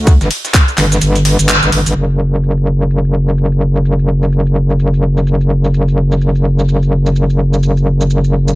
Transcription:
Already playing: D2
0.07 kick, closed hi-hat, ride, shaker
0.21 G1, snare, closed hi-hat, shaker
0.31 closed hi-hat, open hi-hat, ride
0.45 snare, closed hi-hat, shaker
0.54 kick, snare, clap, closed hi-hat, ride, shaker
0.68 closed hi-hat, shaker
0.78 G1, clap, closed hi-hat, open hi-hat, ride
0.92 snare, closed hi-hat, shaker
1.01 G1, closed hi-hat, ride, shaker
1.15 closed hi-hat, shaker
1.25 snare, open hi-hat, ride
1.39 G1, closed hi-hat, shaker
1.49 clap, closed hi-hat, ride, shaker
1.63 G1, snare, closed hi-hat, shaker
1.72 G1, closed hi-hat, open hi-hat, ride
1.86 G1, closed hi-hat, open hi-hat, shaker
1.96 F#1, shaker
2.10 shaker
2.34 shaker
2.43 shaker
2.57 shaker
2.81 shaker
2.90 shaker
3.05 shaker
3.28 shaker
3.38 shaker
3.52 shaker
3.75 shaker
3.85 shaker
3.99 shaker
4.23 shaker
4.32 shaker
4.46 shaker
4.70 shaker
4.79 shaker
4.94 shaker
5.17 shaker
5.27 shaker
5.41 shaker
5.64 shaker
5.74 shaker
5.88 shaker
6.12 shaker
6.21 shaker
6.35 shaker
6.59 shaker
6.68 shaker
6.82 shaker
7.06 shaker
7.16 shaker
7.30 shaker
7.53 shaker
7.63 shaker
7.77 shaker
8.01 shaker
8.10 shaker
8.24 shaker
8.48 shaker

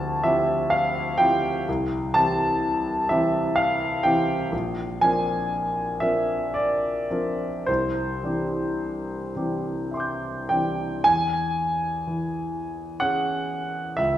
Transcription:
Already playing: D2 F3 C4 E4 G4 A5
0.24 F3 C4 E4 G4 E5
0.70 F5
1.18 F3 C4 E4 G4 G5
1.68 C2
2.14 E3 C4 E4 G4 A5
3.09 E3 C4 E4 G4 E5
3.56 F5
4.03 E3 C4 E4 G4 G5
4.52 A#1
5.01 F3 C4 D4 A#4 G#5
6.00 F3 C4 D4 A#4 E5
6.54 D5
7.10 F3 C4 D4 A#4
7.66 C2 C5
8.24 E3 C4 D4 G4
9.36 E3 C4 D4 G4
9.91 E5 C6
9.97 D6 G6
10.49 E3 C4 D4 G4 G5
11.04 E2 G#5
12.07 E3
13.00 C#4 G#4 F#5
13.97 C#2 E5

